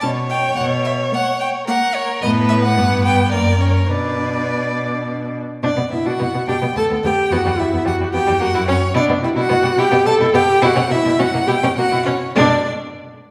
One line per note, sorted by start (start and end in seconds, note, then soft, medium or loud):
0.01 0.49 B2 medium
0.01 0.11 C#4 medium
0.01 1.67 C#5 medium
0.01 0.09 A5 loud
0.29 0.55 G5 loud
0.56 1.03 B2 loud
0.56 0.64 F#5 loud
0.85 0.93 E5 loud
1.12 1.20 A#3 medium
1.12 1.40 F#5 loud
1.40 1.48 G5 loud
1.67 1.76 A#3 medium
1.67 2.24 A#4 medium
1.67 1.96 F#5 loud
1.95 2.21 C#5 loud
2.21 2.78 A2 loud
2.21 2.72 B3 loud
2.21 2.76 B4 loud
2.21 2.30 D#5 loud
2.49 2.54 E5 loud
2.63 3.03 F#5 loud
2.76 3.34 G2 loud
2.76 3.34 B3 loud
2.76 3.31 B4 medium
3.05 3.31 G5 loud
3.32 3.89 F#2 medium
3.32 3.60 A#3 medium
3.32 3.93 A#4 medium
3.32 3.62 D5 loud
3.60 3.87 C#4 medium
3.60 3.91 C#5 loud
3.88 5.40 B2 medium
3.88 5.39 D4 medium
3.88 5.06 B4 loud
3.88 5.36 D5 medium
5.63 5.69 B2 medium
5.63 5.69 D4 medium
5.63 5.72 D4 medium
5.63 5.90 D5 loud
5.77 5.83 B2 medium
5.77 5.83 B3 medium
5.91 5.98 B2 medium
5.91 5.97 B3 medium
5.91 6.08 E4 medium
5.91 6.07 E5 medium
6.06 6.12 B2 medium
6.06 6.11 D4 medium
6.06 6.48 F#4 medium
6.06 6.48 F#5 loud
6.19 6.27 B2 medium
6.19 6.25 B3 medium
6.34 6.40 B2 medium
6.34 6.40 B3 medium
6.47 6.54 B2 medium
6.47 6.53 D4 medium
6.47 6.56 G4 medium
6.47 6.76 G5 loud
6.62 6.68 B2 medium
6.62 6.68 B3 medium
6.75 6.81 D2 medium
6.75 6.81 B3 medium
6.75 7.07 A4 loud
6.75 6.84 A5 loud
6.90 6.96 D2 loud
6.90 6.96 B3 medium
7.03 7.09 D2 medium
7.03 7.10 B3 medium
7.03 7.33 G4 loud
7.03 7.33 G5 loud
7.31 7.37 E2 loud
7.31 7.38 B3 loud
7.31 7.60 F#4 loud
7.31 7.60 F#5 loud
7.45 7.51 E2 medium
7.45 7.51 G3 medium
7.59 7.65 E2 medium
7.59 7.65 G3 medium
7.59 7.88 E4 loud
7.59 7.86 E5 loud
7.73 7.78 E2 medium
7.73 7.78 B3 medium
7.85 7.92 E2 medium
7.85 7.91 G3 medium
7.85 8.13 F#4 loud
7.85 7.95 F#5 loud
8.00 8.06 E2 medium
8.00 8.06 G3 medium
8.13 8.19 E2 loud
8.13 8.19 B3 loud
8.13 8.43 G4 loud
8.13 8.42 G5 loud
8.27 8.34 E2 medium
8.27 8.32 G3 medium
8.40 8.47 F#2 medium
8.40 8.46 A#3 medium
8.40 8.68 F#4 loud
8.40 8.67 F#5 loud
8.54 8.61 F#2 loud
8.54 8.60 E4 loud
8.68 8.74 F#2 medium
8.68 8.74 C#4 medium
8.68 8.77 C#4 medium
8.68 8.95 C#5 loud
8.94 9.01 B2 loud
8.94 9.23 D4 loud
8.94 9.00 E4 medium
8.94 9.04 D5 loud
9.09 9.15 B2 medium
9.09 9.15 B3 medium
9.22 9.28 B2 medium
9.22 9.28 G3 medium
9.22 9.36 E4 medium
9.22 9.29 E5 medium
9.36 9.42 B2 loud
9.36 9.41 E4 loud
9.36 9.81 F#4 loud
9.36 9.80 F#5 loud
9.49 9.56 B2 medium
9.49 9.55 B3 medium
9.63 9.69 B2 medium
9.63 9.69 G3 medium
9.78 9.83 B2 loud
9.78 9.83 E4 loud
9.78 10.08 G4 loud
9.78 10.05 G5 loud
9.91 9.98 B2 medium
9.91 9.97 B3 medium
10.06 10.12 B2 medium
10.06 10.12 G3 medium
10.06 10.37 A4 loud
10.06 10.14 A5 loud
10.20 10.26 B2 loud
10.20 10.26 E4 loud
10.34 10.40 B2 medium
10.34 10.40 B3 medium
10.34 10.63 G4 loud
10.34 10.63 G5 loud
10.62 10.68 B2 loud
10.62 10.68 E4 loud
10.62 10.73 F#4 loud
10.62 10.92 F#5 loud
10.76 10.82 B2 medium
10.76 10.82 C#4 medium
10.89 10.97 B2 medium
10.89 10.95 A#3 medium
10.89 11.18 E4 loud
10.89 11.21 E5 loud
11.05 11.11 B2 loud
11.05 11.11 E4 loud
11.19 11.25 B2 medium
11.19 11.25 C#4 medium
11.19 11.27 F#4 loud
11.19 11.49 F#5 loud
11.33 11.40 B2 medium
11.33 11.39 A#3 medium
11.47 11.54 B2 loud
11.47 11.53 E4 loud
11.47 11.55 G4 loud
11.47 11.76 G5 loud
11.63 11.69 B2 medium
11.63 11.69 C#4 medium
11.77 11.83 B2 medium
11.77 11.84 A#3 medium
11.77 12.05 F#4 loud
11.77 12.07 F#5 loud
11.92 11.99 B2 medium
11.92 11.98 E4 loud
12.06 12.13 B2 medium
12.06 12.12 C#4 medium
12.06 12.14 C#4 medium
12.06 12.34 C#5 loud
12.35 12.69 B2 loud
12.35 12.69 D4 loud
12.35 12.68 D5 loud